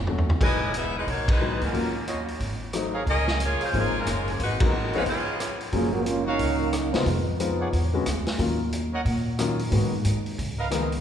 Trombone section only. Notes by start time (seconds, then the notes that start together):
5.73 F3 A#3 C#4 G#4
5.93 C#3 F3 A#3 F#4
6.05 F#3 A#3 C#4 F4
6.25 F#3 A#3 C#4 D#4
6.93 D#3 F3 G#3 B3